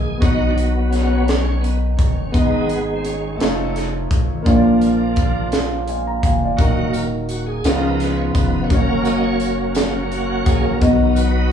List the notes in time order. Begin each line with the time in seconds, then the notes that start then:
Already playing: A#1 E3 G#3 A#3 E4 G#4 D#5
0.18 B2 D#3 F#3 B3 D#4
0.22 B1 F#3 B3 D#4 F#4 C#5, kick, closed hi-hat
0.32 D#5
0.50 D4
0.55 D#4, closed hi-hat
0.91 C#4, snare, closed hi-hat
1.28 snare, closed hi-hat
1.61 B3, closed hi-hat
1.97 F#1 C#4, kick, closed hi-hat
2.32 G#1 G#2 G#3 B3 D#4 G#4, kick, closed hi-hat
2.36 D#5
2.68 B3, closed hi-hat
2.96 C4
3.05 C#4, closed hi-hat
3.36 F1 F3 A3 C#4 D#4
3.40 D#4 F4 C#5, snare, closed hi-hat
3.76 snare, closed hi-hat
4.11 G#1, kick, closed hi-hat
4.42 F3 A#3 D4 F4, closed hi-hat
4.46 A#1 A#2 F4 C#5, kick
4.56 D5
4.81 closed hi-hat
5.16 kick, closed hi-hat
5.52 snare, closed hi-hat
5.88 F5 G#5, closed hi-hat
6.07 A#5
6.23 F1 F5 G#5, kick, closed hi-hat
6.44 D5 F5
6.57 D#1 D#3 F#3 A#3 D#4 F#4, kick, closed hi-hat
6.61 F#4 D#5
6.91 A#4, closed hi-hat, tambourine
7.29 F#4, closed hi-hat, tambourine
7.47 G#4
7.64 C#2 C#3 F3 G#3 B3 C#4 D#4 F4 G#4 A#4, snare, closed hi-hat, tambourine
7.69 C#5
8.00 B4, snare, closed hi-hat
8.17 C#5
8.35 F1 B4, kick, closed hi-hat, tambourine
8.63 A#3 C#5
8.70 F#1 F#3 A#3 C#4 F#4, kick, closed hi-hat
8.74 A#4 C#5
9.05 D#5, closed hi-hat, tambourine
9.24 C#5
9.40 closed hi-hat, tambourine
9.75 snare, closed hi-hat, tambourine
10.12 F#4, closed hi-hat
10.46 A#1 F#3 A#3 C#4 G#4, kick, closed hi-hat, tambourine
10.65 A#4
10.80 B1 B2 F#3 B3 D#4 F#4 D#5, kick, closed hi-hat
11.16 B4, closed hi-hat, tambourine